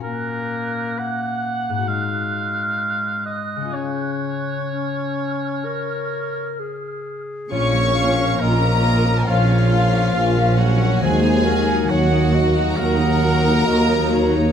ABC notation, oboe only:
X:1
M:4/4
L:1/8
Q:1/4=67
K:Db
V:1 name="Oboe"
B2 g2 f3 e | d6 z2 | [K:Bbm] d2 B2 F3 G | A2 G2 B3 z |]